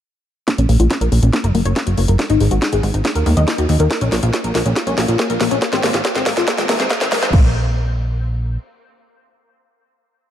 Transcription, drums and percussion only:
0.48 kick, snare, closed hi-hat
0.58 closed hi-hat
0.69 open hi-hat
0.80 closed hi-hat
0.90 kick, snare, closed hi-hat
1.01 closed hi-hat
1.12 open hi-hat
1.23 closed hi-hat
1.33 kick, snare, closed hi-hat
1.44 closed hi-hat, mid tom
1.55 open hi-hat
1.66 closed hi-hat
1.76 kick, snare, closed hi-hat
1.87 closed hi-hat
1.98 open hi-hat
2.08 closed hi-hat
2.19 kick, snare, closed hi-hat
2.30 closed hi-hat
2.40 open hi-hat
2.51 closed hi-hat
2.62 kick, snare, closed hi-hat
2.73 closed hi-hat, mid tom
2.83 kick, open hi-hat
2.94 closed hi-hat
3.05 kick, snare, closed hi-hat
3.16 closed hi-hat
3.26 open hi-hat, mid tom
3.37 closed hi-hat, mid tom
3.48 kick, snare, closed hi-hat
3.58 closed hi-hat
3.69 open hi-hat
3.80 closed hi-hat
3.91 kick, snare, closed hi-hat
4.01 closed hi-hat
4.12 snare, open hi-hat
4.23 closed hi-hat
4.33 kick, snare, closed hi-hat
4.44 closed hi-hat
4.55 snare, open hi-hat
4.66 closed hi-hat
4.76 kick, snare, closed hi-hat
4.87 closed hi-hat, mid tom
4.98 snare, open hi-hat
5.08 closed hi-hat
5.19 kick, snare, closed hi-hat
5.30 closed hi-hat
5.41 snare, open hi-hat
5.51 closed hi-hat
5.62 kick, snare, closed hi-hat
5.73 snare, closed hi-hat
5.83 snare, open hi-hat
5.94 snare, closed hi-hat
6.05 kick, snare, closed hi-hat
6.15 snare, closed hi-hat, mid tom
6.26 kick, snare, open hi-hat
6.37 snare, closed hi-hat
6.48 kick, snare, closed hi-hat
6.58 snare, closed hi-hat
6.69 snare, open hi-hat, mid tom
6.80 snare, closed hi-hat, mid tom
6.90 kick, snare, closed hi-hat
7.01 snare, closed hi-hat
7.12 snare, open hi-hat
7.23 snare, closed hi-hat
7.33 kick, crash

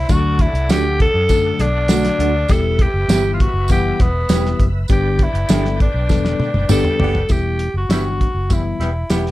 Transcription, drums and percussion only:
0.09 kick, closed hi-hat, tambourine
0.39 kick, closed hi-hat
0.55 closed hi-hat
0.69 snare, closed hi-hat, tambourine
1.00 kick, closed hi-hat
1.29 kick, closed hi-hat, tambourine
1.60 snare, closed hi-hat
1.88 snare, closed hi-hat, tambourine
2.04 snare, closed hi-hat
2.20 closed hi-hat
2.48 kick, closed hi-hat, tambourine
2.79 kick, closed hi-hat
3.09 snare, closed hi-hat, tambourine
3.40 kick, closed hi-hat
3.68 kick, closed hi-hat, tambourine
4.00 kick, snare, closed hi-hat
4.29 snare, closed hi-hat, tambourine
4.46 snare
4.60 kick, closed hi-hat
4.88 kick, closed hi-hat, tambourine
5.19 kick, closed hi-hat
5.35 closed hi-hat
5.49 snare, closed hi-hat, tambourine
5.65 snare
5.80 kick, closed hi-hat
6.09 kick, snare, tambourine
6.25 snare
6.40 high tom
6.54 high tom
6.69 mid tom, tambourine
6.85 mid tom
7.00 floor tom
7.15 floor tom
7.29 kick, closed hi-hat, tambourine
7.59 closed hi-hat
7.90 snare, closed hi-hat, tambourine
8.21 kick, closed hi-hat
8.50 kick, closed hi-hat, tambourine
8.81 snare, closed hi-hat
9.10 snare, closed hi-hat, tambourine
9.26 snare

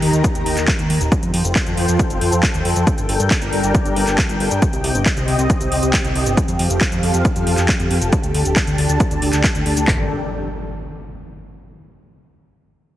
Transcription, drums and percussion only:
0.02 open hi-hat
0.13 closed hi-hat, shaker
0.24 kick, closed hi-hat, shaker
0.35 closed hi-hat, shaker
0.46 open hi-hat
0.57 clap, closed hi-hat, shaker
0.68 kick, clap, closed hi-hat, shaker
0.79 closed hi-hat, shaker
0.90 open hi-hat
1.01 closed hi-hat, shaker
1.12 kick, closed hi-hat, shaker
1.23 closed hi-hat, shaker
1.34 open hi-hat
1.45 closed hi-hat, shaker
1.56 kick, clap, closed hi-hat, shaker
1.67 closed hi-hat, shaker
1.77 open hi-hat
1.88 closed hi-hat, shaker
1.99 kick, closed hi-hat, shaker
2.10 closed hi-hat, shaker
2.21 open hi-hat
2.32 closed hi-hat, shaker
2.43 kick, clap, closed hi-hat, shaker
2.54 closed hi-hat, shaker
2.65 open hi-hat
2.76 closed hi-hat, shaker
2.87 kick, closed hi-hat, shaker
2.98 closed hi-hat, shaker
3.09 open hi-hat
3.20 closed hi-hat, shaker
3.31 kick, clap, closed hi-hat, shaker
3.42 closed hi-hat, shaker
3.53 open hi-hat
3.64 closed hi-hat, shaker
3.75 kick, closed hi-hat, shaker
3.86 closed hi-hat, shaker
3.96 open hi-hat
4.07 clap, closed hi-hat, shaker
4.18 kick, clap, closed hi-hat, shaker
4.29 closed hi-hat, shaker
4.40 open hi-hat
4.51 closed hi-hat, shaker
4.62 kick, closed hi-hat, shaker
4.73 closed hi-hat, shaker
4.84 open hi-hat
4.95 shaker
5.06 kick, clap, closed hi-hat, shaker
5.17 closed hi-hat, shaker
5.28 open hi-hat
5.39 closed hi-hat, shaker
5.50 kick, closed hi-hat, shaker
5.61 closed hi-hat, shaker
5.72 open hi-hat
5.83 closed hi-hat, shaker
5.94 kick, clap, closed hi-hat, shaker
6.05 closed hi-hat, shaker
6.15 open hi-hat
6.26 closed hi-hat, shaker
6.37 kick, closed hi-hat, shaker
6.48 closed hi-hat, shaker
6.59 open hi-hat
6.70 closed hi-hat, shaker
6.81 kick, clap, closed hi-hat, shaker
6.92 closed hi-hat, shaker
7.03 open hi-hat
7.14 closed hi-hat, shaker
7.25 kick, closed hi-hat, shaker
7.36 closed hi-hat, shaker
7.47 open hi-hat
7.58 clap, closed hi-hat, shaker
7.69 kick, clap, closed hi-hat, shaker
7.80 closed hi-hat, shaker
7.91 open hi-hat
8.02 closed hi-hat, shaker
8.13 kick, closed hi-hat, shaker
8.23 closed hi-hat, shaker
8.34 open hi-hat
8.45 closed hi-hat, shaker
8.56 kick, clap, closed hi-hat, shaker
8.67 closed hi-hat, shaker
8.78 open hi-hat
8.89 closed hi-hat, shaker
9.00 kick, closed hi-hat, shaker
9.11 closed hi-hat, shaker
9.22 open hi-hat
9.33 clap, closed hi-hat, shaker
9.44 kick, clap, closed hi-hat, shaker
9.55 closed hi-hat, shaker
9.66 open hi-hat
9.77 closed hi-hat, shaker
9.88 kick, clap

